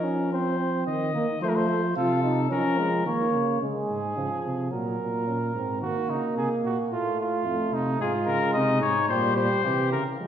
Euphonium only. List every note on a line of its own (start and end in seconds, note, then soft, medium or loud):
0.04 0.31 C#4 medium
0.32 0.59 C4 medium
0.59 1.13 C4 medium
1.14 1.26 A#3 medium
1.42 1.68 A3 loud
1.68 1.81 A3 medium
1.96 2.23 F4 loud
2.24 2.49 D#4 loud
2.50 2.80 C#4 loud
2.78 3.05 G#3 medium
3.06 3.60 A#3 medium
3.62 4.19 G#3 medium
4.18 4.73 F3 medium
4.72 5.27 F#3 medium
5.27 5.40 C#4 medium
5.55 5.84 C4 medium
5.82 6.93 A#3 medium
6.92 7.46 A3 medium
7.46 7.99 A3 medium
8.00 9.07 G#3 medium
9.10 9.66 G3 medium
9.65 10.01 E3 medium
10.20 10.27 G#3 medium